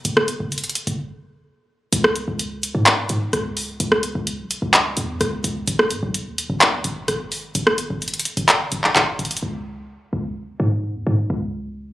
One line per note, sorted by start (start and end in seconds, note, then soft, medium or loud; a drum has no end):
0.05 0.39 F#1 loud
0.05 closed hi-hat medium
0.17 cross-stick loud
0.28 closed hi-hat medium
0.40 0.63 F#1 loud
0.52 closed hi-hat medium
0.58 closed hi-hat medium
0.64 closed hi-hat medium
0.69 closed hi-hat medium
0.75 closed hi-hat medium
0.87 0.99 F#1 loud
0.87 closed hi-hat soft
1.93 2.26 C#2 loud
1.93 closed hi-hat medium
2.04 cross-stick loud
2.16 closed hi-hat medium
2.28 2.73 C#2 loud
2.39 closed hi-hat medium
2.63 closed hi-hat medium
2.75 3.08 G#2 loud
2.86 clap loud
2.86 closed hi-hat medium
3.09 3.32 G#2 loud
3.09 closed hi-hat medium
3.33 3.78 C#2 loud
3.33 cross-stick medium
3.33 closed hi-hat medium
3.57 open hi-hat medium
3.80 4.14 C#2 loud
3.80 closed hi-hat medium
3.92 cross-stick medium
4.03 closed hi-hat medium
4.15 4.40 C#2 loud
4.27 closed hi-hat medium
4.39 4.61 B1 loud
4.51 closed hi-hat medium
4.62 4.96 C#2 loud
4.73 clap loud
4.73 closed hi-hat medium
4.97 5.20 E2 loud
4.97 closed hi-hat medium
5.21 5.43 C#2 loud
5.21 cross-stick medium
5.21 closed hi-hat medium
5.44 5.67 C#2 loud
5.44 closed hi-hat medium
5.67 5.92 G#1 loud
5.67 closed hi-hat medium
5.79 cross-stick medium
5.90 6.02 G#2 loud
5.90 closed hi-hat medium
6.03 6.28 B1 loud
6.14 closed hi-hat medium
6.26 6.48 D#2 loud
6.38 closed hi-hat medium
6.50 6.75 G#1 loud
6.61 clap loud
6.61 closed hi-hat medium
6.73 6.84 D#2 loud
6.84 7.07 G#1 loud
6.84 closed hi-hat medium
7.08 7.53 G#1 loud
7.08 cross-stick medium
7.08 closed hi-hat medium
7.32 open hi-hat medium
7.55 7.89 G#1 loud
7.55 closed hi-hat medium
7.67 cross-stick loud
7.78 closed hi-hat medium
7.90 8.13 G#1 loud
8.02 closed hi-hat medium
8.08 closed hi-hat medium
8.14 closed hi-hat medium
8.19 closed hi-hat medium
8.25 closed hi-hat medium
8.37 8.62 G#1 loud
8.37 closed hi-hat soft
8.48 clap loud
8.48 closed hi-hat medium
8.60 8.72 F#1 loud
8.72 8.95 G#1 loud
8.72 closed hi-hat medium
8.84 clap medium
8.96 9.18 G#1 loud
8.96 clap medium
8.96 closed hi-hat medium
9.19 9.42 G#1 loud
9.19 closed hi-hat soft
9.25 closed hi-hat medium
9.31 closed hi-hat medium
9.37 closed hi-hat medium
9.43 9.88 C#2 loud
10.13 10.35 C#2 loud
10.60 10.96 G#2 loud
10.95 11.06 D#2 loud
11.07 11.29 G#2 loud
11.30 11.93 C#2 loud